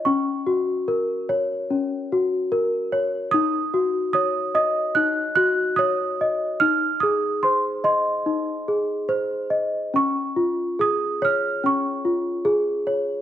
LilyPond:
\new Staff \with { instrumentName = "Celesta" } { \time 4/4 \key des \major \tempo 4 = 73 << { des'''4. r2 r8 | ees'''4 ees'''8 ees'''8 ges'''8 ges'''8 ees'''4 | f'''8 ees'''8 c'''8 c'''2 r8 | des'''4 ees'''8 f'''8 des'''2 | } \\ { des'8 ges'8 bes'8 des''8 des'8 ges'8 bes'8 des''8 | ees'8 ges'8 des''8 ees''8 ees'8 ges'8 des''8 ees''8 | ees'8 aes'8 c''8 ees''8 ees'8 aes'8 c''8 ees''8 | des'8 f'8 aes'8 des''8 des'8 f'8 aes'8 des''8 | } >> }